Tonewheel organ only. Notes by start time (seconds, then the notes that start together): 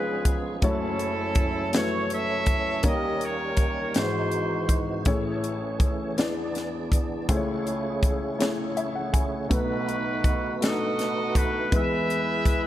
Already playing: F3 G#3 B3 C#4 G#4
0.61 F#3 A3 E4 A4
2.84 G3 A#3 D#4 A#4
3.95 E3 G#3 F#4 C5
5.06 A3 C#4 G#4 C#5
6.17 B3 D4 G#4 D5
7.28 C#3 A3 C#4 E4 C#5
9.51 A3 B3 D#4 F#4 B4
11.71 G#3 E4